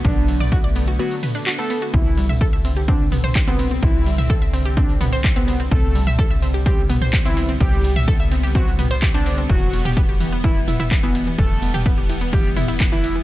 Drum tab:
RD |--x---x---x---x-|--x---x---x---x-|--x---x---x---x-|--x---x---x---x-|
HH |x-oxx-oxxooxx-ox|x-oxx-oxx-oxx-ox|x-oxx-oxxooxx-ox|x-oxx-oxx-oxx-ox|
CP |------------x---|------------x---|------------x---|------------x---|
T2 |---o------o-----|---o------oo----|---o------o-----|---o------oo----|
BD |o---o-----------|o---o---o---o---|o---o---o---o---|o---o---o---o---|

RD |--x---x---x---x-|--x---x---x---x-|--x---x---x---x-|
HH |x-oxx-oxxooxx-ox|x-oxx-oxx-oxx-ox|x-oxx-oxxooxx-ox|
CP |------------x---|------------x---|------------x---|
T2 |---o------o-----|---o------oo----|---o------o-----|
BD |o---o---o---o---|o---o---o---o---|o---o---o---o---|